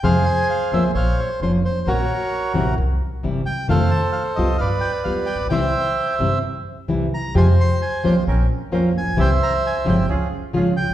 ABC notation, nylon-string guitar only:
X:1
M:4/4
L:1/8
Q:1/4=132
K:Fm
V:1 name="Nylon-string guitar"
[C,F,A,CF] z2 [F,B,DFc] z2 [F,B,DFc] z | [B,D_G] z2 [C,=E,=G,C=E] z2 [C,E,G,CE] z | [C,E,=A,CF] z2 [G,=B,F] z2 [G,B,F] z | [C,=E,G,C=E] z2 [C,E,G,CE] z2 [C,E,G,CE] z |
[C,F,A,CG] z2 [F,B,DFc] z2 [F,B,DFc] z | [C,=E,G,C=E] z2 [D,F,A,DF] z2 [D,F,A,DF] z |]